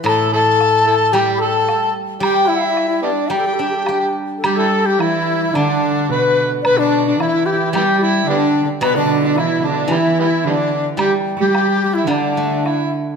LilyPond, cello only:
\new Staff \with { instrumentName = "Cello" } { \clef bass \time 4/4 \tempo 4 = 110 r1 | r1 | g4 e4 d4 b,8. r16 | b,4 e4 g4 d8. r16 |
b,16 d8. e8 d8 e4 d8. r16 | g16 r8 g4~ g16 d4. r8 | }